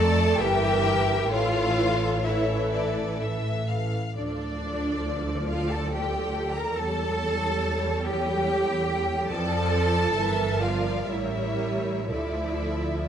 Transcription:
Already playing: F2 A3 A4 D5 A5
0.40 G1 E3 G4 A#4 E5 G5
1.32 A1 E3 F4 A4 C#5 F5
2.26 E3 E4 A4 C#5 E5
2.75 D5
3.23 E5
3.70 F5
4.16 D2 F3 D4 A4 D5
5.49 F4 F5
5.72 A4 A5
5.93 G4 G5
6.57 A#4 A#5
6.77 E2 G3 A4 C#5 A5
8.05 G4 G5
9.30 F2 F3 A4 D5 A5
10.17 G1 E3 A#4 E5
10.62 F3 F4 D5 F5
11.09 A1 G3 E4 A#4 C#5 E5
12.10 D2 F3 E4 A4 D5 E5

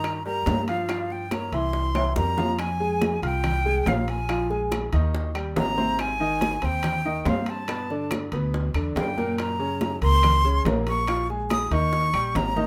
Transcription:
Already playing: G2 D#3 D#4 D#5 A#5
0.04 high bongo, high conga, high timbale, claves
0.26 G3 G4 A#4 A#5, high conga
0.46 G2, high bongo, low bongo, high conga, high timbale, low timbale
0.68 F3 F4 F5, high conga, high timbale
0.89 F3 F4 F5, high bongo, high conga, high timbale, claves
1.10 G5, high bongo, high conga
1.31 A#3 A#4 C#5 A#5, high bongo, high conga, high timbale, low timbale, claves
1.52 C2 E3 E4 E5 C6, high bongo, high conga, high timbale
1.73 high bongo, high conga
1.95 E3 E4 E5, high bongo, high conga, high timbale, claves
2.16 F2 G3 G4 A#4 A#5, high bongo, high conga
2.37 F3 F4 F5, low bongo, high conga, low timbale
2.59 G#5, high bongo, high conga, high timbale, claves
2.80 G#3 G#4 G#5, high conga
3.01 high bongo, high conga, high timbale, low timbale
3.22 C2 F4 F5 G5 F6, high conga, high timbale
3.44 high bongo, high conga, low conga, high timbale, claves
3.66 G#3 G#4 G#5, high conga
3.86 A#1 F4 F5 F6, high bongo, low bongo, high conga, high timbale, low timbale
4.08 G#5, high conga, high timbale
4.29 F3 F4 F5, high bongo, high conga, high timbale, claves
4.50 G#3 G#4 G#5, high bongo, high conga
4.72 high bongo, high conga, high timbale, low timbale, claves
4.92 D#2 D#3 D#4 D#5, high bongo, high conga, high timbale
5.15 high bongo, high conga
5.35 G3 G4 G5, high conga, high timbale, claves
5.56 G#1 A#5, high bongo, low bongo, high conga, high timbale, low timbale
5.77 C3 C4 C5, high bongo, high conga
5.99 G#5, high bongo, high conga, high timbale, claves
6.20 D#3 D#4 D#5, high conga
6.41 high bongo, high conga, high timbale, low timbale
6.62 D#2 C4 C5 G5 C6, high conga, high timbale
6.83 high bongo, high conga, low conga, high timbale, claves
7.05 D#3 D#4 D#5, high conga
7.25 G2 C4 C5 F5 C6, high bongo, low bongo, high conga, high timbale, low timbale
7.46 A5, high conga, high timbale
7.68 B2 B3 B4, high bongo, high conga, high timbale, claves
7.90 D3 D4 D5, high bongo, high conga
8.11 high bongo, high conga, high timbale, low timbale, claves
8.32 D2 B2 B3 B4, high bongo, high conga, high timbale
8.54 high bongo, high conga
8.74 E2 D3 D4 D5, high conga, high timbale, claves
8.95 F#2 G5, high bongo, low bongo, high conga, high timbale, low timbale
9.17 A#2 A#3 A#4, high bongo, high conga
9.38 A#5, high bongo, high conga, high timbale, claves
9.59 C#3 C#4 C#5, high conga
9.81 high bongo, high conga, high timbale, low timbale
10.01 C#2 A#3 A#4 A#5 C6, high conga, high timbale
10.23 high bongo, high conga, low conga, high timbale, claves
10.44 C#3 C#4 C#5, high conga
10.65 A#1 A#3 A#4 A#5, high bongo, low bongo, high conga, high timbale, low timbale
10.87 C#6, high timbale
11.07 F3 F4 F5, high bongo, high conga, high timbale, claves
11.30 G#3 G#4 G#5, high bongo, high conga
11.50 D#6, high bongo, high conga, high timbale, low timbale, claves
11.71 D#2 D#3 D#4 D#5 C#6, high bongo, high conga, high timbale
11.93 high bongo, high conga
12.13 A#1 G3 G4 G5, high conga, high timbale, claves
12.35 G#1 A#5, high bongo, low bongo, high conga, high timbale, low timbale
12.56 D#3 D#4 D#5, high bongo, high conga

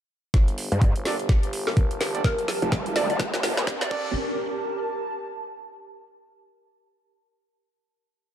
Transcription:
0.34 G1 G4, kick, snare, closed hi-hat, riser
0.48 closed hi-hat
0.58 open hi-hat
0.72 G2, closed hi-hat
0.82 kick, closed hi-hat
0.96 G1, closed hi-hat
1.05 A#3 D4 G4 A4 D5, snare, open hi-hat
1.11 A#4
1.19 closed hi-hat
1.29 A5, kick, snare, closed hi-hat
1.43 G1, closed hi-hat
1.53 open hi-hat
1.67 A#4, snare
1.77 G1, kick, closed hi-hat
1.91 closed hi-hat
2.01 G1, snare, open hi-hat
2.15 A#3 D4 G4 A4 D5, closed hi-hat
2.24 G1 A#4, kick, snare, closed hi-hat
2.38 closed hi-hat
2.48 snare, open hi-hat
2.62 F1, closed hi-hat
2.72 kick, snare, closed hi-hat
2.86 closed hi-hat
2.96 G1 A#3 D4 G4 A4 D5, snare, open hi-hat
3.10 D5, closed hi-hat
3.20 kick, snare, closed hi-hat
3.34 snare, closed hi-hat
3.43 G1, snare, open hi-hat
3.57 snare
3.67 G2, kick, snare, closed hi-hat
3.81 D5, snare, closed hi-hat
3.91 G1 A#3 D4 G4 A4 D5, kick, crash
4.00 A#4
4.31 A5

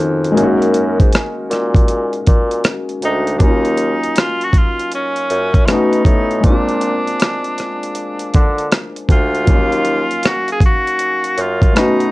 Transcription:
Already playing: D#3 A#3 C#4 D#4 F#4
0.00 F2, closed hi-hat
0.24 closed hi-hat
0.32 G#3 A#3
0.36 F#2 C#4, closed hi-hat
0.40 D#4 F#4
0.62 closed hi-hat
0.74 closed hi-hat
1.00 G#2, kick, closed hi-hat
1.12 cross-stick, closed hi-hat
1.50 A#2, cross-stick, closed hi-hat
1.75 kick, closed hi-hat
1.88 closed hi-hat
2.13 closed hi-hat
2.27 A#2, kick, closed hi-hat
2.51 closed hi-hat
2.64 cross-stick, closed hi-hat
2.89 closed hi-hat
3.02 D2 D#4, closed hi-hat
3.27 closed hi-hat
3.37 D#2 F#3 A#3 D4, kick, closed hi-hat
3.42 C#4 D#4
3.48 F4
3.65 closed hi-hat
3.77 closed hi-hat
4.03 closed hi-hat
4.16 F4, cross-stick, closed hi-hat
4.41 F#4, closed hi-hat
4.53 kick, closed hi-hat
4.57 F4
4.79 closed hi-hat
4.92 C#4, closed hi-hat
5.16 closed hi-hat
5.30 F#2, closed hi-hat
5.54 kick, closed hi-hat
5.66 B2 A3 B3 C#4 F4, cross-stick, closed hi-hat
5.71 D#4 F#4
5.93 closed hi-hat
6.05 A2, kick, closed hi-hat
6.31 closed hi-hat
6.40 A#2 G#3 A#3, kick, closed hi-hat
6.46 C4 D4
6.52 F4
6.69 closed hi-hat
6.81 closed hi-hat
7.07 closed hi-hat
7.20 cross-stick, closed hi-hat
7.44 closed hi-hat
7.58 cross-stick, closed hi-hat
7.83 closed hi-hat
7.95 closed hi-hat
8.19 closed hi-hat
8.34 D3, kick, closed hi-hat
8.58 closed hi-hat
8.72 cross-stick, closed hi-hat
8.96 closed hi-hat
9.09 D2 F4, kick, closed hi-hat
9.35 closed hi-hat
9.44 F3 A#3, kick, closed hi-hat
9.48 D#2 F#3 C#4
9.52 D#4 F5
9.72 closed hi-hat
9.85 closed hi-hat
10.11 closed hi-hat
10.23 F#4, cross-stick, closed hi-hat
10.48 closed hi-hat
10.52 G#4
10.60 kick, closed hi-hat
10.65 F#4
10.87 closed hi-hat
10.99 closed hi-hat
11.24 closed hi-hat
11.38 F#2 F4, closed hi-hat
11.62 kick, closed hi-hat
11.73 B2 A3 B3 C#4, cross-stick, closed hi-hat
11.77 D#4 F#4
12.00 closed hi-hat

